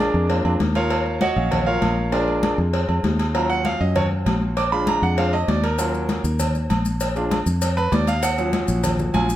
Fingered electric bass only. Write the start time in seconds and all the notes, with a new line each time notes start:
0.14 F2
0.45 F2
0.60 D#2
1.36 A#1
1.82 A#1
2.58 F2
2.89 F2
3.04 D#2
3.81 F#2
4.26 A#1
5.02 F2
5.48 D#2
6.24 D#2
6.70 A#1
7.46 F2
7.92 D#2
8.68 A#1
9.14 A#1